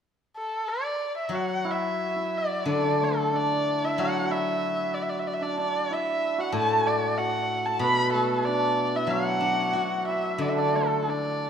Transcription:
0.37 0.70 A4 medium
0.68 1.17 D5 medium
1.17 1.36 E5 medium
1.29 3.32 F#3 soft
1.29 3.99 F#4 medium
1.35 1.72 F#5 medium
1.65 2.16 E4 medium
1.70 2.39 E5 medium
2.16 3.83 E4 medium
2.37 2.68 D5 medium
2.65 4.62 D3 medium
2.65 3.33 D4 medium
2.65 3.05 D5 medium
3.00 7.44 A3 medium
3.00 3.37 A4 medium
3.33 5.41 D4 medium
3.33 3.86 D5 medium
3.84 4.30 E4 medium
3.84 4.01 E5 medium
3.98 5.91 F#3 soft
3.98 4.23 F#4 medium
3.98 4.33 F#5 medium
4.24 6.38 F#4 soft
4.31 5.90 E4 medium
4.31 4.96 E5 medium
4.94 5.04 D5 medium
5.02 5.11 E5 medium
5.10 5.21 D5 medium
5.19 5.28 E5 medium
5.27 5.35 D5 medium
5.34 5.44 E5 medium
5.41 5.57 D4 medium
5.41 5.60 D5 medium
5.57 8.47 D4 medium
5.57 5.94 D5 medium
5.91 8.95 E4 medium
5.91 6.42 E5 medium
6.38 7.17 F#4 medium
6.38 6.54 F#5 medium
6.52 7.81 A2 medium
6.52 7.65 A4 medium
6.52 6.88 A5 medium
6.86 7.19 D5 medium
7.18 9.11 F#4 medium
7.18 7.67 F#5 medium
7.65 10.58 A4 medium
7.65 7.81 A5 medium
7.79 9.73 B2 medium
7.79 10.55 B4 medium
7.79 8.11 B5 loud
8.13 10.73 A3 medium
8.13 8.46 A4 medium
8.45 10.41 D4 medium
8.45 8.98 D5 medium
8.95 10.07 E4 medium
8.95 9.12 E5 medium
9.07 11.06 F#3 medium
9.07 10.07 F#5 medium
9.12 9.75 F#4 medium
9.40 10.73 D4 soft
9.73 11.07 F#4 soft
9.73 11.50 F#4 medium
10.08 11.01 E4 medium
10.08 10.43 E5 medium
10.38 11.50 D3 medium
10.38 10.53 D4 medium
10.38 10.50 D5 medium
10.48 10.60 E5 medium
10.54 11.07 D4 medium
10.58 10.77 D5 medium
10.74 11.50 A3 medium
10.74 11.11 A4 medium
11.01 11.50 E4 soft
11.07 11.50 D4 medium
11.07 11.50 D5 medium

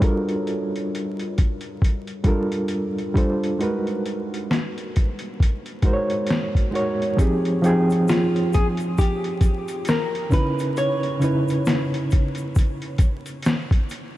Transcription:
0.00 1.36 G3 medium
0.00 1.37 D4 medium
0.00 1.37 F4 medium
0.00 0.27 F#4 medium
0.00 1.38 A4 medium
0.00 1.39 A#4 medium
0.00 0.27 B4 medium
0.00 kick loud
0.00 closed hi-hat medium
0.29 closed hi-hat soft
0.47 closed hi-hat soft
0.76 closed hi-hat soft
0.95 closed hi-hat medium
1.19 closed hi-hat soft
1.38 kick medium
1.38 closed hi-hat medium
1.61 closed hi-hat soft
1.82 kick medium
1.82 closed hi-hat medium
2.07 closed hi-hat soft
2.24 2.97 G3 medium
2.24 2.97 D4 medium
2.24 2.98 F4 medium
2.24 2.98 A4 medium
2.24 kick loud
2.24 closed hi-hat medium
2.28 2.99 A#4 medium
2.52 closed hi-hat soft
2.68 closed hi-hat medium
2.98 closed hi-hat soft
3.14 3.51 G3 medium
3.14 3.51 D4 medium
3.14 3.52 F4 medium
3.14 3.52 A4 medium
3.14 kick medium
3.14 closed hi-hat medium
3.18 3.53 C5 medium
3.43 closed hi-hat soft
3.59 4.95 G#3 medium
3.59 4.95 D#4 medium
3.59 4.96 F#4 medium
3.59 4.97 A#4 medium
3.59 closed hi-hat medium
3.63 4.97 B4 medium
3.87 closed hi-hat soft
4.06 closed hi-hat medium
4.34 closed hi-hat soft
4.51 snare medium
4.51 closed hi-hat medium
4.78 closed hi-hat soft
4.96 kick medium
4.96 closed hi-hat medium
5.19 closed hi-hat soft
5.40 kick medium
5.40 closed hi-hat medium
5.66 closed hi-hat soft
5.82 6.55 G#3 medium
5.82 6.56 D#4 medium
5.82 6.56 F#4 medium
5.82 6.57 A#4 medium
5.82 kick medium
5.82 closed hi-hat medium
5.87 5.93 C5 medium
5.93 6.61 C#5 medium
6.10 closed hi-hat soft
6.27 snare medium
6.27 closed hi-hat medium
6.55 kick medium
6.55 closed hi-hat soft
6.71 7.08 G#3 medium
6.71 7.09 D#4 medium
6.71 7.10 F#4 medium
6.71 7.10 A#4 medium
6.75 7.11 C#5 medium
6.75 closed hi-hat medium
7.02 closed hi-hat soft
7.17 7.54 F3 medium
7.17 7.54 C4 medium
7.17 7.55 D#4 medium
7.17 7.55 G4 medium
7.17 kick loud
7.17 closed hi-hat medium
7.17 shaker medium
7.21 7.56 G#4 medium
7.45 closed hi-hat soft
7.62 8.98 F3 medium
7.62 8.99 C4 medium
7.62 8.99 D#4 medium
7.62 9.00 G5 medium
7.62 closed hi-hat medium
7.62 shaker soft
7.67 9.00 G#4 medium
7.90 closed hi-hat soft
7.90 shaker soft
8.08 8.54 F4 medium
8.08 snare medium
8.08 closed hi-hat medium
8.08 shaker medium
8.36 closed hi-hat soft
8.53 8.66 G#4 medium
8.53 kick medium
8.53 closed hi-hat medium
8.53 shaker soft
8.77 closed hi-hat soft
8.77 shaker soft
8.98 9.90 G4 medium
8.98 kick medium
8.98 closed hi-hat medium
8.98 shaker medium
9.24 closed hi-hat soft
9.41 kick loud
9.41 closed hi-hat medium
9.41 shaker medium
9.68 closed hi-hat soft
9.68 shaker soft
9.85 10.33 A#4 medium
9.85 snare loud
9.85 closed hi-hat medium
9.85 shaker medium
10.15 closed hi-hat soft
10.29 11.06 C#3 medium
10.29 11.06 C#4 medium
10.29 11.07 D#4 medium
10.29 11.07 E4 medium
10.29 10.77 B4 medium
10.29 kick loud
10.29 closed hi-hat medium
10.29 shaker soft
10.34 11.08 B4 medium
10.59 closed hi-hat soft
10.59 shaker medium
10.77 12.52 C#5 loud
10.77 closed hi-hat medium
10.77 shaker medium
11.03 closed hi-hat soft
11.20 12.56 C#3 medium
11.20 12.57 C#4 medium
11.20 12.57 D#4 medium
11.20 12.58 E4 medium
11.20 closed hi-hat medium
11.20 shaker soft
11.24 12.58 B4 medium
11.48 closed hi-hat soft
11.48 shaker soft
11.66 snare loud
11.66 closed hi-hat medium
11.66 shaker medium
11.94 closed hi-hat soft
12.11 kick medium
12.11 closed hi-hat medium
12.11 shaker soft
12.35 closed hi-hat soft
12.35 shaker soft
12.55 kick loud
12.55 closed hi-hat medium
12.55 shaker medium
12.82 closed hi-hat soft
12.98 kick loud
12.98 closed hi-hat medium
12.98 shaker medium
13.26 closed hi-hat soft
13.26 shaker soft
13.42 snare loud
13.42 closed hi-hat medium
13.42 shaker medium
13.71 kick medium
13.71 closed hi-hat soft
13.89 closed hi-hat medium
13.89 shaker soft

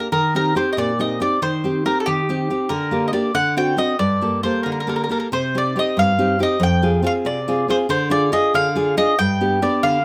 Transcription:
0.12 0.55 D#3 medium
0.12 0.33 A#4 medium
0.35 0.54 C4 soft
0.35 0.54 D#4 soft
0.35 0.55 G4 soft
0.35 0.55 A#4 medium
0.55 0.91 C4 soft
0.55 0.91 D#4 soft
0.55 0.91 G4 soft
0.55 0.71 C5 medium
0.73 0.77 D#5 medium
0.77 1.20 A#2 medium
0.77 0.99 D5 medium
0.99 1.19 C4 soft
0.99 1.20 D#4 soft
0.99 1.20 G4 medium
0.99 1.20 D#5 medium
1.20 1.37 C4 soft
1.20 1.38 D#4 soft
1.20 1.38 G4 soft
1.20 1.42 D5 medium
1.42 1.84 D#3 medium
1.42 1.83 C5 medium
1.64 1.84 C4 soft
1.64 1.84 D#4 soft
1.64 1.85 G4 soft
1.85 2.20 C4 soft
1.85 2.20 D#4 soft
1.85 2.20 G4 medium
1.85 1.99 A#4 medium
2.00 2.07 A4 medium
2.06 2.49 D#3 medium
2.06 2.72 G4 medium
2.29 2.49 C4 soft
2.29 2.49 D#4 soft
2.29 2.50 G4 medium
2.50 2.66 C4 soft
2.50 2.66 D#4 soft
2.50 2.67 G4 soft
2.69 3.12 D3 medium
2.69 3.05 A#4 medium
2.91 3.12 A#3 soft
2.91 3.12 D4 soft
2.91 3.12 G4 soft
3.08 3.12 D#5 soft
3.13 3.30 A#3 soft
3.13 3.30 D4 soft
3.13 3.30 G4 soft
3.13 3.32 D5 medium
3.34 3.77 D3 medium
3.34 3.55 F#5 medium
3.57 3.76 C4 soft
3.57 3.76 D4 soft
3.57 3.77 F#4 soft
3.57 3.77 G5 medium
3.77 3.94 C4 soft
3.77 3.94 D4 soft
3.77 3.95 F#4 medium
3.77 3.99 D#5 medium
3.99 4.42 G2 medium
3.99 4.40 D5 medium
4.21 4.42 A#3 soft
4.21 4.43 G4 soft
4.21 4.43 A4 soft
4.43 4.79 A#3 soft
4.43 4.79 G4 soft
4.43 4.80 A4 medium
4.43 4.63 C5 medium
4.63 5.09 D3 medium
4.63 4.71 A#4 soft
4.72 4.79 A#4 soft
4.80 4.88 A#4 medium
4.87 5.08 A#3 soft
4.87 5.09 G4 soft
4.87 5.10 A4 soft
4.87 4.95 A#4 soft
4.96 5.02 A#4 soft
5.04 5.10 A#4 soft
5.09 5.27 A#3 soft
5.09 5.27 G4 soft
5.09 5.28 A4 soft
5.09 5.18 A#4 medium
5.20 5.26 A#4 soft
5.32 5.75 C3 medium
5.32 5.56 C5 medium
5.55 5.75 C4 soft
5.55 5.75 D#4 soft
5.55 5.76 G4 soft
5.55 5.78 D5 medium
5.76 6.11 C4 soft
5.76 6.11 D#4 soft
5.76 6.11 G4 soft
5.76 5.97 D#5 medium
5.97 6.39 G2 medium
5.97 6.39 F5 medium
6.19 6.38 C4 medium
6.19 6.39 D#4 soft
6.19 6.39 G4 medium
6.39 6.56 C4 medium
6.39 6.57 D#4 soft
6.39 6.57 G4 medium
6.39 6.61 D#5 medium
6.60 7.02 F2 medium
6.60 7.03 G5 medium
6.82 7.01 C4 soft
6.82 7.02 F4 soft
6.82 7.03 G#4 soft
7.03 7.38 C4 soft
7.03 7.38 F4 soft
7.03 7.39 G#4 medium
7.07 7.12 F5 medium
7.25 7.67 C3 medium
7.25 7.66 D5 medium
7.48 7.67 C4 medium
7.48 7.68 F4 soft
7.48 7.68 G#4 medium
7.68 7.85 C4 soft
7.68 7.86 F4 soft
7.68 7.86 G#4 soft
7.68 7.76 C5 medium
7.89 8.31 D3 medium
7.89 8.10 C5 medium
8.10 8.31 D4 soft
8.10 8.31 F4 soft
8.10 8.32 G#4 soft
8.10 8.31 D5 medium
8.32 8.67 D4 medium
8.32 8.67 F4 soft
8.32 8.68 G#4 medium
8.32 8.52 D#5 medium
8.54 8.96 D3 medium
8.54 8.95 F5 medium
8.75 8.96 D4 medium
8.75 8.96 F4 soft
8.75 8.96 G#4 medium
8.97 9.14 D4 soft
8.97 9.14 F4 soft
8.97 9.14 G#4 medium
8.97 9.17 D#5 medium
9.19 9.61 G2 medium
9.19 9.63 G5 medium
9.41 9.61 B3 soft
9.41 9.61 D4 soft
9.41 9.61 G4 medium
9.62 9.97 B3 medium
9.62 9.98 D4 soft
9.62 9.98 G4 medium
9.62 9.84 D5 medium
9.83 10.05 D3 medium
9.83 10.05 F5 medium

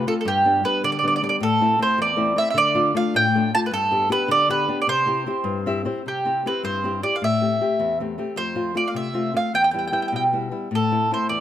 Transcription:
0.07 0.22 A3 soft
0.07 0.22 C4 soft
0.07 0.22 F4 soft
0.07 0.13 A4 medium
0.21 0.26 A4 medium
0.25 0.63 G2 medium
0.25 0.62 G4 medium
0.45 0.63 G3 soft
0.45 0.63 B3 soft
0.45 0.64 D4 soft
0.64 0.95 G3 soft
0.64 0.95 B3 soft
0.64 0.96 D4 soft
0.64 0.82 B4 medium
0.84 1.21 D3 medium
0.84 0.91 D5 medium
0.92 0.98 D5 medium
0.99 1.06 D5 medium
1.03 1.21 G3 soft
1.03 1.22 B3 soft
1.03 1.21 D4 medium
1.08 1.14 D5 medium
1.16 1.22 D5 medium
1.22 1.37 G3 soft
1.22 1.38 B3 soft
1.22 1.38 D4 soft
1.22 1.28 D5 medium
1.29 1.35 D5 medium
1.40 1.79 A2 medium
1.40 1.78 A4 medium
1.61 1.78 A3 soft
1.61 1.78 C4 soft
1.61 1.78 E4 soft
1.79 2.10 A3 soft
1.79 2.11 C4 soft
1.79 2.10 E4 soft
1.79 1.99 C5 medium
1.98 2.36 E2 medium
1.98 2.36 D5 medium
2.16 2.35 A3 soft
2.16 2.35 C4 soft
2.16 2.35 E4 medium
2.36 2.52 A3 soft
2.36 2.52 C4 soft
2.36 2.52 E4 soft
2.36 2.49 E5 medium
2.50 2.92 D3 medium
2.50 2.57 E5 medium
2.58 2.93 D5 loud
2.74 2.93 A3 soft
2.74 2.93 D4 soft
2.74 2.95 F4 medium
2.95 3.26 A3 soft
2.95 3.25 D4 soft
2.95 3.26 F4 medium
2.95 3.13 F5 medium
3.14 3.51 A2 medium
3.14 3.54 G5 medium
3.35 3.53 A3 soft
3.35 3.54 D4 soft
3.35 3.54 F4 medium
3.54 3.68 A3 soft
3.54 3.69 D4 soft
3.54 3.69 F4 soft
3.54 3.59 A5 loud
3.66 3.72 B4 medium
3.71 4.09 G2 medium
3.71 4.08 A4 medium
3.91 4.08 B3 soft
3.91 4.09 D4 soft
3.91 4.09 G4 medium
4.09 4.41 B3 soft
4.09 4.41 D4 medium
4.09 4.41 G4 medium
4.09 4.29 B4 medium
4.28 4.66 D3 medium
4.28 4.49 D5 medium
4.48 4.67 B3 soft
4.48 4.67 D4 soft
4.48 4.68 G4 medium
4.48 4.79 B4 medium
4.68 4.83 B3 soft
4.68 4.83 D4 soft
4.68 4.84 G4 soft
4.82 4.88 D5 medium
4.87 5.25 C3 medium
4.87 5.64 C5 loud
5.06 5.25 C4 soft
5.06 5.25 E4 soft
5.06 5.26 G4 medium
5.26 5.58 C4 soft
5.26 5.59 E4 soft
5.26 5.59 G4 soft
5.44 5.84 G2 medium
5.66 5.84 C4 soft
5.66 5.85 E4 soft
5.66 5.85 G4 soft
5.66 5.85 E5 medium
5.85 6.01 C4 soft
5.85 6.01 E4 soft
5.85 6.01 G4 soft
5.85 6.04 C5 soft
6.06 6.44 C3 soft
6.06 6.48 G4 medium
6.25 6.45 C4 soft
6.25 6.45 E4 soft
6.25 6.45 G4 soft
6.46 6.77 C4 soft
6.46 6.77 E4 soft
6.46 6.78 G4 soft
6.46 6.64 B4 medium
6.63 7.02 G2 medium
6.63 7.01 C5 medium
6.84 7.01 C4 soft
6.84 7.02 E4 soft
6.84 7.02 G4 soft
7.02 7.18 C4 soft
7.02 7.18 E4 soft
7.02 7.19 G4 soft
7.02 7.15 D5 medium
7.16 7.23 F5 medium
7.22 7.60 A2 medium
7.22 7.97 E5 medium
7.41 7.60 A3 soft
7.41 7.60 C4 soft
7.41 7.60 G4 soft
7.61 7.92 A3 soft
7.61 7.93 C4 soft
7.61 7.93 G4 soft
7.79 8.18 E2 medium
8.00 8.17 A3 soft
8.00 8.17 C4 soft
8.00 8.18 G4 soft
8.18 8.33 A3 soft
8.18 8.34 C4 soft
8.18 8.34 G4 soft
8.36 8.74 F2 medium
8.36 8.73 C5 medium
8.55 8.73 A3 soft
8.55 8.74 C4 soft
8.55 8.74 F4 soft
8.74 9.06 A3 soft
8.74 9.07 C4 soft
8.74 9.07 F4 soft
8.74 8.88 D5 medium
8.88 8.95 F5 soft
8.94 9.33 C3 medium
8.94 9.32 E5 medium
9.13 9.32 A3 soft
9.13 9.33 C4 soft
9.13 9.33 F4 soft
9.34 9.49 A3 soft
9.34 9.50 C4 soft
9.34 9.50 F4 soft
9.34 9.54 F5 medium
9.54 9.93 E2 medium
9.54 9.62 G5 medium
9.64 9.70 G5 medium
9.71 9.91 G3 soft
9.71 9.91 B3 soft
9.71 9.91 E4 soft
9.71 9.77 G5 medium
9.79 9.85 G5 soft
9.88 9.92 G5 medium
9.92 10.24 G3 soft
9.92 10.25 B3 soft
9.92 10.25 E4 soft
9.92 10.00 G5 medium
10.02 10.07 G5 medium
10.08 10.15 G5 soft
10.12 10.51 B2 soft
10.12 10.23 G5 medium
10.33 10.50 G3 soft
10.33 10.50 B3 soft
10.33 10.51 E4 soft
10.51 10.67 G3 soft
10.51 10.67 B3 soft
10.51 10.68 E4 soft
10.71 11.10 A2 medium
10.75 11.11 A4 medium
10.91 11.10 A3 soft
10.91 11.10 C4 soft
10.91 11.11 E4 soft
11.11 11.40 A3 soft
11.11 11.40 C4 soft
11.11 11.40 E4 soft
11.11 11.29 C5 medium
11.29 11.40 E2 medium
11.29 11.40 D5 medium

